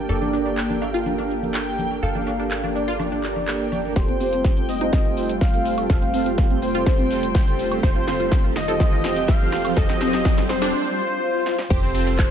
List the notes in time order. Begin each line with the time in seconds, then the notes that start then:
Already playing: A#3 G4 G5
0.09 G1 A#3 D4 G4 A4 A#4 D5, high woodblock, shaker
0.22 D4, high conga, shaker
0.33 D4, cowbell, shaker
0.46 D4, high woodblock, shaker
0.57 clap, shaker
0.70 D4, high conga, shaker
0.81 D4 F5, high woodblock, shaker
0.94 F4, shaker
1.06 D4, high conga, shaker
1.18 D4, high woodblock, shaker
1.31 shaker
1.42 high conga, shaker
1.54 G5, clap, high woodblock, shaker
1.67 shaker
1.78 high conga, shaker
1.91 high woodblock, shaker
2.03 G1 A4 F5, shaker
2.15 D4, high conga, shaker
2.27 D4, cowbell, high woodblock, shaker
2.40 D4, shaker
2.51 clap, shaker
2.63 D4, high conga, high woodblock, shaker
2.75 D4 D5, shaker
2.88 F4, shaker
2.99 D4, high conga, high woodblock, shaker
3.12 D4, shaker
3.23 clap, cowbell, shaker
3.36 high conga, high woodblock, shaker
3.48 clap, shaker
3.61 shaker
3.72 high conga, high woodblock, shaker
3.85 shaker
3.96 F1 G3 A3 F4 G4 A4 C5 G5, kick, snare, closed hi-hat, riser
4.09 C4, closed hi-hat
4.20 C4 F4 G4 A4 C5, open hi-hat
4.33 C4, closed hi-hat
4.45 kick, snare, closed hi-hat
4.57 C4 F4 G4 A4 C5, closed hi-hat
4.69 C4 D#5, open hi-hat
4.81 C4 D#4 F4 G4 A4 C5, closed hi-hat
4.93 C4 A4, kick, snare, closed hi-hat
5.05 C4, closed hi-hat
5.17 C4 F4 G4 A4 C5, open hi-hat
5.29 closed hi-hat
5.41 F5, kick, snare, closed hi-hat
5.54 C4 F4 G4 A4 C5, closed hi-hat
5.65 open hi-hat
5.78 C4 F4 G4 A4 C5, closed hi-hat, high woodblock
5.90 F1 F4 A4 F5, kick, snare, closed hi-hat
6.02 C4, closed hi-hat
6.14 C4 F4 G4 A4 C5, open hi-hat
6.26 C4, closed hi-hat
6.38 kick, snare, closed hi-hat
6.50 C4 F4 G4 A4 C5, closed hi-hat
6.62 C4 C5, open hi-hat
6.75 C4 F4 G4 A4 C5, closed hi-hat
6.86 C4 F4 G4 A4 C5, kick, snare, closed hi-hat
6.99 C4, closed hi-hat
7.11 C4 F4 G4 A4 C5, open hi-hat
7.23 closed hi-hat
7.35 kick, snare, closed hi-hat
7.47 C4 F4 G4 A4 C5, closed hi-hat
7.59 open hi-hat
7.71 C4 F4 G4 A4 C5, closed hi-hat, high woodblock
7.83 F1 G4 C5, kick, snare, closed hi-hat
7.96 F4, closed hi-hat
8.07 C4 F4 G4 A4 C5, snare, open hi-hat
8.20 F4, closed hi-hat
8.32 kick, snare, closed hi-hat
8.44 C4 F4 G4 A4 C5, closed hi-hat
8.56 F4 D#5, snare, open hi-hat
8.68 C4 F4 G4 A4 C5, closed hi-hat
8.80 C4 F4 G4 A4 C5, kick, snare, closed hi-hat
8.92 F4, closed hi-hat
9.04 C4 F4 G4 A4 C5, snare, open hi-hat
9.16 closed hi-hat
9.28 F5, kick, snare, closed hi-hat
9.41 C4 F4 G4 A4 C5, closed hi-hat
9.52 snare, open hi-hat
9.65 C4 F4 G4 A4 C5, closed hi-hat, high woodblock
9.77 F1 C4 G4 A4 D#5, kick, snare, closed hi-hat
9.89 C4, snare, closed hi-hat
10.01 C4 F4 G4 A4 C5, snare, open hi-hat
10.13 C4, snare, closed hi-hat
10.25 kick, snare, closed hi-hat
10.37 C4 F4 G4 A4 C5, snare, closed hi-hat
10.49 C4 C5, snare, open hi-hat
10.62 C4 D4 F4 G4 A4 C5, snare, closed hi-hat
10.74 swell
11.46 snare
11.59 snare
11.70 F1 G3 C4 F4 G4 A4 C5, kick, closed hi-hat, crash, shaker
11.83 C4, closed hi-hat, shaker
11.95 C4 F4 G4 A4 C5, open hi-hat
12.07 C4, closed hi-hat, shaker
12.19 kick, clap, closed hi-hat, shaker